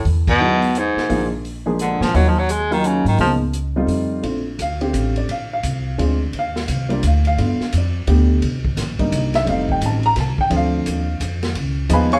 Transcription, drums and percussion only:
0.05 kick soft
0.05 open hi-hat soft
0.27 kick medium
0.27 crash medium
0.62 open hi-hat soft
0.75 closed hi-hat medium
0.97 snare soft
1.10 kick soft
1.10 open hi-hat soft
1.45 open hi-hat soft
1.79 closed hi-hat medium
2.02 snare medium
2.14 kick soft
2.14 open hi-hat soft
2.49 closed hi-hat medium
2.72 open hi-hat soft
2.84 closed hi-hat medium
3.06 open hi-hat soft
3.18 kick soft
3.18 open hi-hat soft
3.53 closed hi-hat medium
3.88 open hi-hat soft
4.23 kick soft
4.23 ride medium
4.59 kick soft
4.59 hi-hat pedal medium
4.59 ride medium
4.81 ride soft
4.94 kick soft
4.94 hi-hat pedal medium
4.94 ride medium
5.16 ride soft
5.29 kick soft
5.29 ride medium
5.63 kick soft
5.63 hi-hat pedal medium
5.63 ride medium
5.99 kick soft
5.99 ride medium
6.33 kick soft
6.33 ride medium
6.56 snare soft
6.68 kick soft
6.68 hi-hat pedal medium
6.68 ride medium
6.90 ride soft
7.03 kick soft
7.03 hi-hat pedal medium
7.03 ride medium
7.25 ride soft
7.38 kick soft
7.38 ride medium
7.60 snare soft
7.73 kick soft
7.73 hi-hat pedal medium
7.73 ride medium
8.07 kick soft
8.07 ride medium
8.42 kick soft
8.42 ride medium
8.65 kick medium
8.77 kick soft
8.77 snare soft
8.77 hi-hat pedal medium
8.77 ride medium
8.99 kick medium
8.99 ride soft
9.12 kick soft
9.12 hi-hat pedal medium
9.12 ride medium
9.34 snare soft
9.34 ride soft
9.47 kick soft
9.47 ride medium
9.69 kick medium
9.81 kick soft
9.81 hi-hat pedal medium
9.81 ride medium
10.03 ride soft
10.16 kick soft
10.16 snare soft
10.16 ride medium
10.38 kick medium
10.51 kick soft
10.51 ride medium
10.86 kick soft
10.86 hi-hat pedal medium
10.86 ride medium
11.21 kick soft
11.21 hi-hat pedal medium
11.21 ride medium
11.43 snare medium
11.43 ride soft
11.55 kick soft
11.55 ride medium
11.90 kick soft
11.90 hi-hat pedal medium
11.90 ride medium
12.12 ride soft

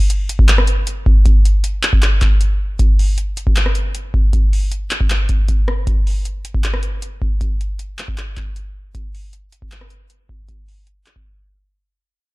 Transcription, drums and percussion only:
0.10 closed hi-hat medium
0.29 closed hi-hat medium
0.39 kick loud
0.48 clap loud
0.48 closed hi-hat medium
0.58 cross-stick medium
0.67 closed hi-hat medium
0.87 closed hi-hat medium
1.06 kick loud
1.26 kick loud
1.26 closed hi-hat medium
1.45 closed hi-hat medium
1.64 closed hi-hat medium
1.83 clap medium
1.83 closed hi-hat medium
1.93 kick loud
2.02 clap loud
2.02 closed hi-hat medium
2.21 kick loud
2.21 clap medium
2.21 closed hi-hat medium
2.41 closed hi-hat medium
2.79 kick loud
2.79 closed hi-hat medium
2.99 open hi-hat medium
3.18 closed hi-hat medium
3.37 closed hi-hat medium
3.47 kick loud
3.56 clap loud
3.56 closed hi-hat medium
3.66 cross-stick medium
3.75 closed hi-hat medium
3.95 closed hi-hat medium
4.14 kick loud
4.33 kick loud
4.33 closed hi-hat medium
4.53 open hi-hat medium
4.71 closed hi-hat medium
4.91 clap medium
4.91 closed hi-hat medium
5.01 kick loud
5.10 clap loud
5.10 closed hi-hat medium
5.29 kick loud
5.29 closed hi-hat medium
5.48 kick medium
5.48 closed hi-hat medium
5.68 cross-stick loud
5.87 kick loud
5.87 closed hi-hat medium
6.07 open hi-hat medium
6.25 closed hi-hat medium
6.45 closed hi-hat medium
6.54 kick loud
6.64 clap loud
6.64 closed hi-hat medium
6.74 cross-stick medium
6.83 closed hi-hat medium
7.02 closed hi-hat medium
7.22 kick loud
7.41 kick loud
7.41 closed hi-hat medium
7.61 closed hi-hat medium
7.79 closed hi-hat medium
7.99 clap medium
7.99 closed hi-hat medium
8.08 kick loud
8.18 clap loud
8.18 closed hi-hat medium
8.37 kick loud
8.37 clap medium
8.37 closed hi-hat medium
8.56 closed hi-hat medium
8.95 kick loud
8.95 closed hi-hat medium
9.15 open hi-hat medium
9.33 closed hi-hat medium
9.52 closed hi-hat medium
9.62 kick loud
9.71 clap loud
9.71 closed hi-hat medium
9.81 cross-stick medium
9.90 closed hi-hat medium
10.10 closed hi-hat medium
10.29 kick loud
10.49 kick loud
10.49 closed hi-hat medium
10.68 open hi-hat medium
10.87 closed hi-hat medium
11.06 clap loud
11.06 closed hi-hat medium
11.16 kick loud

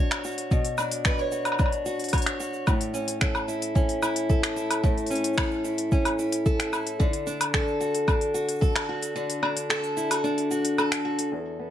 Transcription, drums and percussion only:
0.11 finger snap medium
0.11 open hi-hat soft
0.11 low woodblock medium
0.11 shaker soft
0.24 shaker medium
0.31 shaker soft
0.38 open hi-hat medium
0.51 kick loud
0.51 shaker soft
0.65 open hi-hat soft
0.65 shaker soft
0.78 low woodblock medium
0.78 shaker medium
0.91 open hi-hat medium
1.05 finger snap medium
1.05 kick loud
1.05 shaker soft
1.18 shaker soft
1.32 shaker medium
1.45 open hi-hat soft
1.45 low woodblock medium
1.45 shaker soft
1.52 low woodblock medium
1.59 kick loud
1.59 low woodblock soft
1.59 shaker soft
1.66 low woodblock soft
1.72 open hi-hat soft
1.72 shaker soft
1.86 shaker medium
1.99 open hi-hat soft
1.99 shaker soft
2.04 open hi-hat soft
2.09 open hi-hat soft
2.13 kick medium
2.13 open hi-hat soft
2.13 low woodblock medium
2.13 shaker soft
2.18 open hi-hat soft
2.22 open hi-hat soft
2.26 finger snap medium
2.26 open hi-hat soft
2.26 shaker soft
2.40 shaker medium
2.53 shaker soft
2.67 kick loud
2.67 low woodblock medium
2.67 shaker soft
2.81 open hi-hat soft
2.81 shaker soft
2.94 shaker medium
3.08 open hi-hat medium
3.08 shaker soft
3.21 finger snap medium
3.21 kick medium
3.21 shaker soft
3.35 low woodblock medium
3.35 shaker soft
3.49 shaker medium
3.62 open hi-hat soft
3.62 shaker soft
3.76 kick loud
3.76 shaker soft
3.89 open hi-hat soft
3.89 shaker soft
4.03 low woodblock medium
4.03 shaker medium
4.16 open hi-hat medium
4.16 shaker soft
4.30 kick medium
4.30 shaker soft
4.43 finger snap medium
4.43 open hi-hat soft
4.43 shaker soft
4.57 shaker medium
4.71 open hi-hat medium
4.71 low woodblock medium
4.71 shaker soft
4.84 kick loud
4.84 shaker soft
4.98 open hi-hat soft
4.98 shaker soft
5.06 open hi-hat soft
5.11 shaker medium
5.15 open hi-hat soft
5.24 open hi-hat medium
5.24 shaker soft
5.33 shaker soft
5.38 finger snap medium
5.38 kick loud
5.38 low woodblock medium
5.38 shaker soft
5.51 shaker soft
5.65 shaker medium
5.78 open hi-hat medium
5.78 shaker soft
5.92 kick loud
5.92 shaker soft
6.05 open hi-hat soft
6.05 low woodblock medium
6.05 shaker soft
6.19 shaker medium
6.32 open hi-hat medium
6.32 shaker soft
6.46 kick loud
6.46 shaker soft
6.60 finger snap medium
6.60 open hi-hat soft
6.60 shaker soft
6.73 low woodblock medium
6.73 shaker medium
6.87 open hi-hat medium
6.87 shaker soft
7.00 kick loud
7.00 shaker soft
7.13 open hi-hat soft
7.13 shaker soft
7.27 shaker medium
7.41 open hi-hat medium
7.41 low woodblock medium
7.41 shaker soft
7.54 finger snap medium
7.54 kick medium
7.54 shaker soft
7.68 shaker soft
7.81 shaker medium
7.95 open hi-hat medium
7.95 shaker soft
8.08 kick loud
8.08 low woodblock medium
8.08 shaker soft
8.21 open hi-hat soft
8.21 shaker soft
8.35 shaker medium
8.49 open hi-hat medium
8.49 shaker soft
8.52 shaker soft
8.55 shaker soft
8.59 shaker soft
8.62 kick medium
8.62 shaker soft
8.65 shaker soft
8.69 shaker soft
8.72 finger snap medium
8.72 open hi-hat soft
8.72 low woodblock medium
8.72 shaker soft
8.76 shaker soft
9.03 open hi-hat medium
9.03 shaker medium
9.16 shaker soft
9.30 open hi-hat soft
9.30 shaker soft
9.43 low woodblock medium
9.57 open hi-hat medium
9.57 shaker soft
9.70 finger snap medium
9.70 shaker soft
9.84 open hi-hat soft
9.84 shaker soft
9.97 shaker medium
10.11 open hi-hat medium
10.11 low woodblock medium
10.11 shaker soft
10.24 shaker soft
10.38 open hi-hat soft
10.38 shaker soft
10.51 shaker medium
10.65 open hi-hat medium
10.65 shaker soft
10.78 low woodblock medium
10.78 shaker soft
10.92 finger snap medium
10.92 open hi-hat soft
11.19 open hi-hat medium
11.19 shaker soft

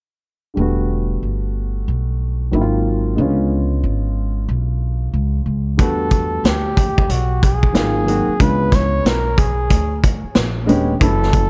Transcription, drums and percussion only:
5.79 kick loud
5.79 closed hi-hat medium
6.11 kick medium
6.11 closed hi-hat medium
6.45 snare loud
6.45 closed hi-hat medium
6.77 kick medium
6.77 closed hi-hat medium
6.98 kick medium
7.10 closed hi-hat medium
7.43 kick medium
7.43 closed hi-hat medium
7.63 kick medium
7.75 snare loud
7.75 closed hi-hat medium
8.08 closed hi-hat medium
8.40 kick medium
8.40 closed hi-hat medium
8.72 kick medium
8.72 snare soft
8.72 closed hi-hat medium
9.06 snare loud
9.06 closed hi-hat medium
9.38 kick medium
9.38 closed hi-hat medium
9.70 kick medium
9.70 closed hi-hat medium
10.04 kick medium
10.04 closed hi-hat medium
10.35 snare loud
10.35 closed hi-hat medium
10.69 closed hi-hat medium
11.01 kick medium
11.01 closed hi-hat medium
11.23 snare soft
11.33 kick medium
11.33 closed hi-hat medium

